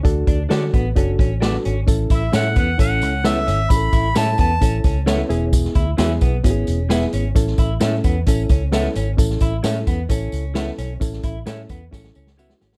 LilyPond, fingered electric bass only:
\new Staff \with { instrumentName = "Fingered electric bass" } { \clef bass \time 4/4 \key a \major \tempo 4 = 131 d,8 d,8 d8 a,,8 fis,,8 a,,4 gis,,8 | a,,8 a,,8 a,8 e,8 a,,8 cis,4 gis,,8 | a,,8 a,,8 a,8 e,8 a,,8 cis,4 e,,8~ | e,,8 d,8 e,8 b,,8 gis,,8 e,,4 gis,,8 |
a,,8 a,,8 a,8 e,8 a,,8 cis,4 gis,,8 | a,,8 a,,8 a,8 e,8 a,,8 cis,4 b,,8 | a,,8 a,,8 a,8 e,8 a,,8 cis,4 gis,,8 | }